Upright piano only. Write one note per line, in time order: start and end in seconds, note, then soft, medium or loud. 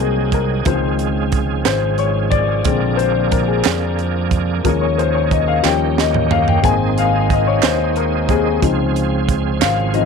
0.00 0.62 F#3 medium
0.00 0.62 A#3 soft
0.00 0.63 C4 medium
0.00 0.34 G#4 medium
0.00 0.34 A#4 medium
0.00 0.67 C5 medium
0.34 0.64 A#4 medium
0.66 1.62 D#3 soft
0.66 1.62 F3 soft
0.66 1.62 C4 medium
0.66 0.97 C5 medium
1.65 2.00 C5 medium
1.99 2.30 C#5 medium
2.30 3.00 D5 medium
2.65 3.61 D3 medium
2.65 3.61 G#3 soft
2.65 3.61 C4 medium
2.97 3.29 C5 medium
3.31 3.49 A#4 medium
3.48 4.11 G#4 medium
4.64 5.60 F3 soft
4.64 5.60 G#3 soft
4.64 5.60 C#4 medium
4.64 4.82 A#4 medium
4.81 4.98 C#5 medium
4.98 5.15 C5 medium
5.14 5.30 C#5 medium
5.31 5.48 D#5 medium
5.48 5.53 F5 medium
5.62 6.07 F3 medium
5.62 6.08 G3 soft
5.62 6.08 C#4 medium
5.62 5.99 G5 medium
5.99 6.32 D#5 medium
6.32 6.48 F5 medium
6.49 6.65 G5 medium
6.62 8.58 G#3 medium
6.62 8.27 A#3 soft
6.62 8.27 C4 medium
6.62 6.98 G#5 loud
6.98 7.32 F5 medium
7.31 7.47 D#5 medium
7.47 7.52 C#5 medium
7.64 7.97 C5 medium
7.97 8.30 A#4 medium
8.28 8.59 A#3 soft
8.28 8.59 C4 soft
8.28 8.58 G4 soft
8.28 9.25 G#4 medium
8.62 9.57 F3 medium
8.62 9.57 C4 soft
8.62 9.58 D#4 medium
9.61 9.92 F5 medium
9.94 10.05 F3 soft
9.94 10.05 C4 soft
9.94 10.05 D#4 medium
9.94 10.05 D#5 medium